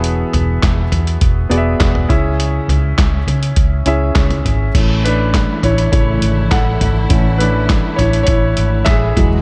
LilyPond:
<<
  \new Staff \with { instrumentName = "Grand piano" } { \time 4/4 \key a \major \tempo 4 = 102 <b fis' gis' e''>4. r4 <b fis' gis' d'' e''>4 <cis' e' gis' e''>8~ | <cis' e' gis' e''>4. r4 <cis' e' gis' e''>4. | r8 <d' b'>4 <e' cis''>8 <e' cis''>4 <a' fis''>8. r16 | r8 <d' b'>4 <e' cis''>8 <e' cis''>4 <gis' e''>8. r16 | }
  \new Staff \with { instrumentName = "Grand piano" } { \clef bass \time 4/4 \key a \major e4 r2 r8 cis8~ | cis4 r2. | <e a cis'>2 <cis e a>8 r4. | <e a cis'>2.~ <e a cis'>8 <e fis gis>8 | }
  \new Staff \with { instrumentName = "String section" } { \clef bass \time 4/4 \key a \major r1 | r1 | <e a e'>1~ | <e a e'>2.~ <e a e'>8 <e gis fis'>8 | }
  \new Staff \with { instrumentName = "Fingered electric bass" } { \clef bass \time 4/4 \key a \major e,,8 e,,8 e,,8 e,8 e,,8 e,,8 e,,8 cis,8~ | cis,8 cis,8 cis,8 cis8 cis,8 cis,8 cis,8 gis,,8 | a,,4~ a,,16 r16 a,,8 a,,8 gis,,8 a,,8 gis,,8 | a,,4~ a,,16 r16 a,,8 a,,8 gis,,8 a,,8 e,,8 | }
  \new DrumStaff \with { instrumentName = "Drums" } \drummode { \time 4/4 hh8 <hh tomfh>8 <hc hh bd sn>8 <hh tomfh>16 hh16 <hh bd>8 hh8 <hc hh bd sn>16 tomfh16 <hh bd tomfh>8 | hh8 <hh tomfh>8 <hc hh bd sn>8 <hh tomfh>16 hh16 <hh bd>8 hh8 <hc hh bd sn>16 <hh tomfh>16 <hh tomfh>8 | <cymc hh bd>8 hh8 <hc hh bd sn>8 <hh tomfh>16 hh16 <hh bd>8 hh8 <hc hh bd sn>8 <hh tomfh>8 | <hh bd>8 hh8 <hc hh bd sn>8 <hh tomfh>16 hh16 <hh bd>8 hh8 <hc hh bd sn>8 <hh bd tomfh>8 | }
>>